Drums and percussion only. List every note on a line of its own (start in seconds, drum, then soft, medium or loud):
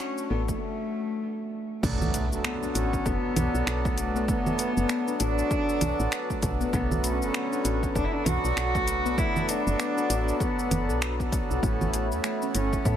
0.00 finger snap loud
0.00 shaker soft
0.18 shaker soft
0.48 kick medium
0.48 shaker medium
1.83 kick loud
1.83 crash loud
1.83 shaker soft
2.02 low conga medium
2.02 shaker soft
2.14 closed hi-hat medium
2.14 shaker medium
2.32 shaker soft
2.44 finger snap loud
2.44 shaker soft
2.63 shaker soft
2.75 closed hi-hat medium
2.75 shaker medium
2.93 kick medium
2.93 shaker soft
3.06 kick loud
3.06 shaker soft
3.36 closed hi-hat medium
3.36 low conga medium
3.36 shaker medium
3.55 shaker soft
3.67 finger snap loud
3.67 shaker soft
3.85 kick loud
3.85 shaker soft
3.98 closed hi-hat medium
3.98 shaker medium
4.16 shaker soft
4.28 kick loud
4.28 shaker soft
4.46 low conga medium
4.46 shaker soft
4.59 closed hi-hat medium
4.59 shaker medium
4.77 shaker soft
4.89 finger snap loud
4.89 shaker soft
5.08 shaker soft
5.20 closed hi-hat medium
5.20 shaker medium
5.38 shaker soft
5.51 kick loud
5.51 shaker soft
5.69 shaker soft
5.81 closed hi-hat medium
5.81 low conga medium
5.81 shaker medium
6.00 shaker soft
6.12 finger snap loud
6.12 shaker soft
6.30 kick medium
6.30 shaker soft
6.42 kick loud
6.42 closed hi-hat medium
6.42 shaker medium
6.61 shaker soft
6.73 kick loud
6.73 shaker soft
6.91 low conga medium
6.91 shaker soft
7.04 closed hi-hat medium
7.04 shaker medium
7.22 shaker soft
7.34 finger snap medium
7.34 shaker soft
7.53 shaker soft
7.65 closed hi-hat medium
7.65 shaker medium
7.83 kick medium
7.83 shaker soft
7.95 kick loud
7.95 shaker soft
8.26 closed hi-hat medium
8.26 low conga medium
8.26 shaker medium
8.45 shaker soft
8.57 finger snap loud
8.57 shaker soft
8.75 kick loud
8.75 shaker soft
8.87 closed hi-hat medium
8.87 shaker medium
9.06 shaker soft
9.18 kick loud
9.18 shaker soft
9.36 low conga medium
9.36 shaker soft
9.49 closed hi-hat medium
9.49 shaker medium
9.67 shaker soft
9.80 finger snap medium
9.80 shaker soft
9.98 shaker soft
10.10 closed hi-hat medium
10.10 shaker medium
10.28 shaker soft
10.40 kick loud
10.40 shaker soft
10.59 shaker soft
10.71 closed hi-hat medium
10.71 low conga medium
10.71 shaker medium
10.90 shaker soft
11.02 finger snap loud
11.02 shaker soft
11.20 kick medium
11.20 shaker soft
11.32 kick loud
11.32 closed hi-hat medium
11.32 shaker medium
11.51 shaker soft
11.63 kick loud
11.63 shaker soft
11.81 low conga medium
11.81 shaker soft
11.94 closed hi-hat medium
11.94 shaker medium
12.12 shaker soft
12.24 finger snap medium
12.24 shaker soft
12.42 shaker soft
12.55 closed hi-hat medium
12.55 shaker medium
12.73 kick medium
12.73 shaker soft
12.85 kick loud
12.85 shaker soft